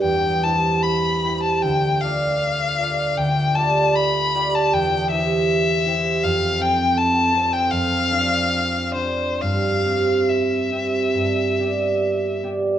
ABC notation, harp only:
X:1
M:4/4
L:1/8
Q:1/4=77
K:C
V:1 name="Harp"
[E,,G] [EGc]2 [EGc] D,, [FAd]2 [FAd] | D,, [FGd]2 [FGd] E,, [EGc]2 [EGc] | F,, [CAc]2 [CAc] F,, [D_Ac]2 [DAc] | G,, [CGc]2 [CGc] G,, [B,Gd]2 [B,Gd] |]